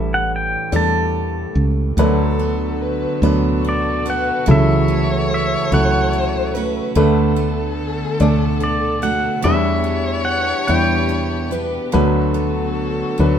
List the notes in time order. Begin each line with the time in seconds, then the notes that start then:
Already playing: A1 A2 E3 G3 D4 A4 E5
0.14 F#5
0.36 G5
0.72 E2 G3 A3 D4 G4 A4
0.76 A5
1.55 C#2
1.96 D2 D3 F#3 A3 B3 D4 F#4 A4 B4
2.39 B3
2.81 B4
3.22 D2 F#3 B3 D4 A4 B4
3.65 D4
3.69 D5
4.06 B3 D4 A4 B4
4.10 F#5
4.46 C#2 C#3 E3 F#3 A3 E4 A4 C#5
4.51 E5
4.88 A3
5.34 E5
5.72 C#2 F#3 A3 E4 A4 F#5
6.13 C#4
6.54 A3 C#4 F#4 B4
6.95 D2 D3 A3 B3 D4 A4 B4
7.36 A3
8.20 D2 A3 D4 D5
8.60 D4 D5
9.02 A3 D4 F#4 F#5
9.42 E2 E3 G3 B3 D4 E4 G4 C#5 E5
9.84 B3
10.25 F#5
10.67 E2 G3 B3 D4 E4 G5
11.09 D4
11.51 B3 D4 G4 B4
11.91 D2 D3 F#3 A3 D4 F#4 A4 B4
12.34 B3
13.18 D2 F#3 B3 D4 B4